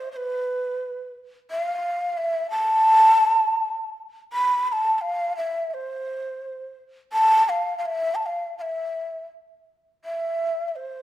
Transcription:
0.12 0.17 C5 medium
0.16 1.13 B4 medium
1.51 1.63 E5 medium
1.63 2.19 F5 medium
2.17 2.50 E5 loud
2.50 3.90 A5 loud
4.33 4.68 B5 medium
4.68 4.73 B5 medium
4.72 4.98 A5 medium
4.98 5.36 F5 medium
4.98 5.03 A5 medium
5.37 5.70 E5 medium
5.70 6.77 C5 medium
5.70 5.75 E5 medium
7.13 7.50 A5 loud
7.49 7.77 F5 medium
7.78 7.87 F5 medium
7.86 8.16 E5 loud
8.15 8.23 A5 medium
8.23 8.56 F5 medium
8.23 8.27 A5 medium
8.58 9.25 E5 medium
8.58 8.62 F5 medium
10.05 10.68 E5 medium
10.68 10.77 E5 medium
10.76 11.02 C5 medium

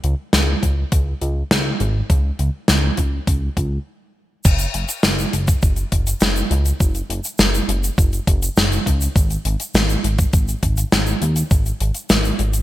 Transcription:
0.04 0.15 C#2 medium
0.04 closed hi-hat medium
0.33 0.55 C#2 loud
0.33 snare loud
0.33 closed hi-hat medium
0.63 0.85 C#2 medium
0.63 kick medium
0.63 closed hi-hat medium
0.92 1.14 C#2 medium
0.92 kick loud
0.92 closed hi-hat loud
1.21 1.43 C#2 loud
1.21 closed hi-hat medium
1.51 1.73 C#2 medium
1.51 snare loud
1.51 closed hi-hat medium
1.80 2.02 G#1 loud
1.80 closed hi-hat medium
2.10 2.32 C#2 loud
2.10 kick loud
2.10 closed hi-hat medium
2.39 2.50 C#2 medium
2.39 closed hi-hat medium
2.68 2.90 C#2 loud
2.68 snare loud
2.68 closed hi-hat medium
2.97 3.20 C#2 medium
2.97 kick medium
2.97 closed hi-hat medium
3.27 3.49 C#2 medium
3.27 kick loud
3.27 closed hi-hat medium
3.57 3.79 C#2 loud
3.57 kick medium
3.57 closed hi-hat medium
4.45 4.67 F#1 loud
4.45 kick loud
4.45 closed hi-hat medium
4.45 crash loud
4.45 shaker medium
4.59 closed hi-hat soft
4.59 shaker medium
4.74 4.85 F#1 medium
4.74 closed hi-hat loud
4.89 closed hi-hat medium
4.89 shaker medium
5.03 5.26 F#1 loud
5.03 snare loud
5.03 closed hi-hat medium
5.03 shaker medium
5.19 closed hi-hat soft
5.19 shaker medium
5.33 5.55 F#1 medium
5.33 closed hi-hat loud
5.47 kick loud
5.47 closed hi-hat medium
5.47 shaker medium
5.62 5.85 F#1 medium
5.62 kick loud
5.62 closed hi-hat medium
5.62 shaker medium
5.76 closed hi-hat soft
5.76 shaker soft
5.92 6.14 F#1 loud
5.92 kick medium
5.92 closed hi-hat loud
6.07 closed hi-hat medium
6.07 shaker medium
6.20 6.43 F#1 medium
6.20 snare loud
6.20 closed hi-hat medium
6.20 shaker medium
6.36 closed hi-hat medium
6.36 shaker medium
6.51 6.73 C#2 loud
6.51 closed hi-hat medium
6.66 closed hi-hat medium
6.66 shaker medium
6.80 7.02 F#1 loud
6.80 kick loud
6.80 closed hi-hat medium
6.80 shaker medium
6.95 closed hi-hat soft
6.95 shaker soft
7.10 7.21 F#1 medium
7.10 closed hi-hat loud
7.24 closed hi-hat medium
7.24 shaker medium
7.38 7.61 F#1 medium
7.38 snare loud
7.38 closed hi-hat medium
7.38 shaker medium
7.54 closed hi-hat soft
7.54 shaker medium
7.68 7.90 F#1 medium
7.68 closed hi-hat loud
7.84 closed hi-hat medium
7.84 shaker medium
7.98 8.20 F#1 medium
7.98 kick loud
7.98 closed hi-hat medium
7.98 shaker medium
8.13 closed hi-hat soft
8.13 shaker soft
8.27 8.49 F#1 loud
8.27 kick loud
8.27 closed hi-hat loud
8.42 closed hi-hat medium
8.42 shaker medium
8.57 8.79 F#1 loud
8.57 snare loud
8.57 closed hi-hat medium
8.57 shaker medium
8.72 closed hi-hat soft
8.72 shaker soft
8.86 9.08 C#2 loud
8.86 kick medium
8.86 closed hi-hat loud
9.01 closed hi-hat medium
9.01 shaker medium
9.16 9.38 G#1 loud
9.16 kick loud
9.16 closed hi-hat medium
9.16 shaker medium
9.30 closed hi-hat soft
9.30 shaker medium
9.45 9.56 G#1 medium
9.45 closed hi-hat loud
9.60 closed hi-hat medium
9.60 shaker medium
9.74 9.96 G#1 loud
9.74 snare loud
9.74 closed hi-hat medium
9.74 shaker medium
9.89 closed hi-hat medium
9.89 shaker soft
10.04 10.26 G#1 medium
10.04 closed hi-hat loud
10.18 kick loud
10.18 closed hi-hat medium
10.18 shaker medium
10.33 10.55 G#1 medium
10.33 kick loud
10.33 closed hi-hat medium
10.33 shaker medium
10.48 closed hi-hat soft
10.48 shaker soft
10.63 10.85 G#1 loud
10.63 kick medium
10.63 closed hi-hat loud
10.77 closed hi-hat medium
10.77 shaker medium
10.92 11.14 G#1 medium
10.92 snare loud
10.92 closed hi-hat medium
10.92 shaker medium
11.06 closed hi-hat soft
11.06 shaker soft
11.22 11.43 D#2 loud
11.22 closed hi-hat loud
11.36 closed hi-hat medium
11.36 shaker medium
11.51 11.73 G#1 loud
11.51 kick loud
11.51 closed hi-hat medium
11.51 shaker medium
11.66 closed hi-hat soft
11.66 shaker soft
11.80 11.91 G#1 medium
11.80 closed hi-hat loud
11.94 closed hi-hat medium
11.94 shaker medium
12.09 12.32 G#1 loud
12.09 snare loud
12.09 closed hi-hat medium
12.09 shaker medium
12.24 closed hi-hat soft
12.24 shaker soft
12.39 12.61 G#1 medium
12.39 closed hi-hat medium
12.53 closed hi-hat medium
12.53 shaker medium

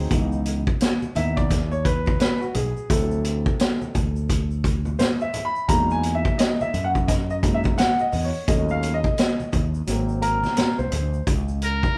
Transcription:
0.00 0.10 F#3 medium
0.00 0.11 C4 medium
0.00 0.12 G#4 medium
0.10 0.67 C#2 loud
0.10 0.60 E3 medium
0.10 0.60 B3 soft
0.10 0.60 D#4 medium
0.10 kick loud
0.10 closed hi-hat medium
0.10 shaker medium
0.32 shaker soft
0.46 closed hi-hat medium
0.46 shaker soft
0.67 kick medium
0.67 shaker soft
0.81 snare loud
0.81 closed hi-hat medium
0.81 shaker medium
1.02 high conga medium
1.02 shaker soft
1.15 2.16 D#2 medium
1.15 1.47 B3 soft
1.15 1.47 D#4 medium
1.15 1.47 E4 soft
1.15 1.38 E5 loud
1.15 closed hi-hat medium
1.15 low conga medium
1.15 shaker soft
1.37 1.69 D5 medium
1.37 kick medium
1.37 shaker soft
1.50 kick medium
1.50 snare soft
1.50 closed hi-hat medium
1.50 shaker medium
1.72 1.86 C#5 loud
1.72 shaker soft
1.85 2.18 B4 medium
1.85 kick medium
1.85 closed hi-hat medium
1.85 shaker soft
2.06 kick medium
2.06 high conga medium
2.06 shaker soft
2.20 2.42 B4 medium
2.20 snare loud
2.20 closed hi-hat medium
2.20 low conga medium
2.20 shaker medium
2.41 2.55 F#4 medium
2.41 shaker soft
2.54 2.72 B1 medium
2.54 2.91 G#4 medium
2.54 closed hi-hat medium
2.54 low conga medium
2.54 shaker soft
2.77 shaker soft
2.89 3.46 D2 medium
2.89 3.90 F#3 medium
2.89 3.91 C4 medium
2.89 3.91 E4 medium
2.89 4.60 A4 medium
2.89 kick loud
2.89 closed hi-hat loud
2.89 shaker medium
3.11 shaker soft
3.24 closed hi-hat medium
3.24 shaker soft
3.46 kick medium
3.46 shaker soft
3.59 snare loud
3.59 closed hi-hat medium
3.59 shaker medium
3.81 high conga medium
3.81 shaker soft
3.95 4.96 D2 medium
3.95 kick medium
3.95 closed hi-hat medium
3.95 low conga medium
3.95 shaker soft
4.16 shaker soft
4.29 kick medium
4.29 closed hi-hat medium
4.29 shaker medium
4.51 shaker soft
4.64 kick loud
4.64 closed hi-hat medium
4.64 shaker soft
4.85 high conga medium
4.85 shaker soft
4.99 5.04 C5 loud
4.99 snare loud
4.99 closed hi-hat medium
4.99 low conga medium
4.99 shaker medium
5.20 5.44 E5 loud
5.20 shaker soft
5.34 closed hi-hat medium
5.34 low conga medium
5.34 shaker soft
5.45 5.69 B5 loud
5.55 shaker soft
5.68 6.25 E2 loud
5.68 6.69 F#3 medium
5.68 6.69 G#3 medium
5.68 6.70 A#3 medium
5.68 6.70 D#4 medium
5.68 5.93 A#5 loud
5.68 kick loud
5.68 closed hi-hat loud
5.68 shaker medium
5.90 6.13 G#5 loud
5.90 shaker medium
6.03 closed hi-hat medium
6.03 shaker soft
6.15 6.37 E5 loud
6.25 kick medium
6.25 shaker soft
6.38 6.62 D#5 medium
6.38 snare loud
6.38 closed hi-hat loud
6.38 shaker medium
6.61 6.83 E5 loud
6.61 high conga medium
6.61 shaker soft
6.74 7.74 F#2 medium
6.74 closed hi-hat medium
6.74 low conga medium
6.74 shaker soft
6.84 6.90 F#5 medium
6.95 kick medium
6.95 shaker soft
7.08 7.13 D#5 medium
7.08 kick medium
7.08 snare soft
7.08 closed hi-hat medium
7.08 shaker medium
7.30 7.36 D#5 medium
7.30 shaker soft
7.43 7.75 F#3 medium
7.43 7.75 G#3 soft
7.43 7.75 A#3 soft
7.43 7.75 D#4 medium
7.43 kick medium
7.43 closed hi-hat medium
7.43 shaker soft
7.54 7.60 E5 loud
7.64 kick medium
7.64 high conga medium
7.64 shaker medium
7.78 8.02 F#5 loud
7.78 snare loud
7.78 closed hi-hat medium
7.78 low conga medium
7.78 shaker medium
7.99 8.23 D#5 medium
7.99 shaker soft
8.12 8.30 E2 loud
8.12 open hi-hat medium
8.12 low conga medium
8.12 shaker soft
8.25 8.46 C#5 medium
8.34 shaker soft
8.48 9.04 D#2 loud
8.48 8.97 F#3 medium
8.48 8.98 A3 medium
8.48 8.98 C#4 medium
8.48 8.72 D#5 medium
8.48 kick loud
8.48 closed hi-hat loud
8.48 shaker medium
8.69 8.95 F5 medium
8.69 shaker soft
8.83 closed hi-hat medium
8.83 shaker soft
8.94 9.95 D#5 loud
9.04 kick medium
9.04 shaker soft
9.18 snare loud
9.18 closed hi-hat loud
9.18 shaker medium
9.40 high conga medium
9.40 shaker soft
9.53 9.81 D#2 medium
9.53 kick medium
9.53 closed hi-hat medium
9.53 low conga medium
9.53 shaker soft
9.74 shaker soft
9.87 10.44 G#1 medium
9.87 10.88 F#3 medium
9.87 10.88 A#3 medium
9.87 10.89 C4 medium
9.87 closed hi-hat medium
9.87 shaker medium
10.09 shaker soft
10.22 10.75 A#4 loud
10.22 closed hi-hat medium
10.22 shaker soft
10.44 snare soft
10.44 high conga medium
10.44 shaker medium
10.57 snare loud
10.57 closed hi-hat medium
10.57 low conga medium
10.57 shaker medium
10.78 10.90 C2 medium
10.78 11.24 C5 medium
10.78 shaker soft
10.92 11.20 D2 medium
10.92 closed hi-hat medium
10.92 low conga medium
10.92 shaker soft
11.14 shaker soft
11.27 11.83 C#2 loud
11.27 kick loud
11.27 closed hi-hat medium
11.27 shaker medium
11.48 shaker medium
11.62 11.98 A#4 medium
11.62 closed hi-hat medium
11.62 shaker soft
11.83 kick medium
11.83 shaker soft

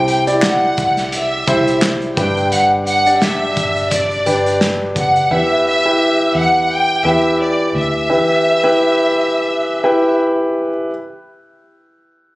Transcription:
0.00 0.74 C2 medium
0.00 0.74 C3 medium
0.00 0.15 E4 medium
0.00 0.15 G4 medium
0.00 0.15 C5 medium
0.08 0.24 G5 medium
0.08 closed hi-hat medium
0.27 1.23 E4 medium
0.27 1.22 G4 medium
0.27 1.22 D5 medium
0.27 closed hi-hat soft
0.42 1.09 F#5 medium
0.42 snare loud
0.42 clap medium
0.42 closed hi-hat medium
0.77 1.44 C2 medium
0.77 kick medium
0.77 closed hi-hat medium
0.97 snare soft
0.97 closed hi-hat soft
1.12 1.83 E5 medium
1.12 closed hi-hat loud
1.47 2.13 C2 medium
1.47 2.17 E4 medium
1.47 2.16 G4 medium
1.47 2.17 C5 medium
1.47 kick medium
1.47 closed hi-hat medium
1.67 closed hi-hat soft
1.82 snare medium
1.82 clap medium
1.82 closed hi-hat medium
2.02 closed hi-hat soft
2.17 2.50 G1 medium
2.17 3.18 G2 medium
2.17 2.87 D4 medium
2.17 2.87 G4 medium
2.17 2.87 B4 medium
2.17 2.50 G5 medium
2.17 kick loud
2.17 closed hi-hat medium
2.37 closed hi-hat soft
2.52 3.53 G1 loud
2.52 2.67 F#5 medium
2.52 closed hi-hat medium
2.87 3.19 F#5 medium
2.87 closed hi-hat medium
3.06 4.02 D4 medium
3.06 4.02 G4 medium
3.06 4.02 D5 medium
3.06 closed hi-hat soft
3.21 3.91 E5 medium
3.21 snare loud
3.21 closed hi-hat medium
3.57 4.22 G1 medium
3.57 kick medium
3.57 closed hi-hat medium
3.76 closed hi-hat soft
3.91 4.61 D5 medium
3.91 kick medium
3.91 closed hi-hat loud
4.11 closed hi-hat soft
4.26 4.92 G1 medium
4.26 5.10 D4 medium
4.26 5.10 G4 medium
4.26 5.10 B4 medium
4.26 closed hi-hat medium
4.46 closed hi-hat soft
4.61 snare medium
4.61 closed hi-hat medium
4.96 5.28 F#1 medium
4.96 5.29 F#5 medium
4.96 kick medium
4.96 closed hi-hat medium
5.16 closed hi-hat soft
5.31 6.31 E2 medium
5.31 6.32 E3 medium
5.31 5.73 E4 medium
5.31 5.73 G4 medium
5.31 5.73 B4 medium
5.31 5.65 E5 medium
5.66 6.32 E5 medium
5.85 6.80 E4 medium
5.85 6.81 G4 medium
5.85 6.80 B4 medium
6.35 7.01 E2 medium
6.35 6.71 F#5 medium
6.71 7.06 G5 loud
7.05 7.71 E2 medium
7.05 7.89 E4 medium
7.05 7.89 G4 medium
7.05 7.89 B4 medium
7.05 7.41 E5 medium
7.41 7.73 D5 medium
7.75 8.07 D2 medium
7.75 10.16 E5 medium
8.10 9.10 E3 medium
8.10 8.52 E4 medium
8.10 8.52 G4 medium
8.10 8.52 B4 medium
8.64 9.59 E4 medium
8.64 9.59 G4 medium
8.64 9.59 B4 medium
9.84 10.68 E4 medium
9.84 10.68 G4 medium
9.84 10.68 B4 medium

